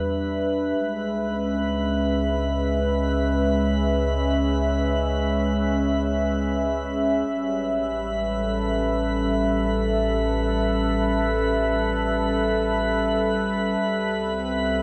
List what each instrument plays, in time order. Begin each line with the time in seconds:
Already playing: sub bass E2, analog synth pad G3 D4 B4 E5, synth texture B4 B5
0.75 sub bass C#2, analog synth pad G#3
1.24 analog synth pad C#4
7.27 sub bass A1, analog synth pad G3, synth texture B4 B5
8.31 analog synth pad A4
13.81 sub bass C2
14.19 analog synth pad C4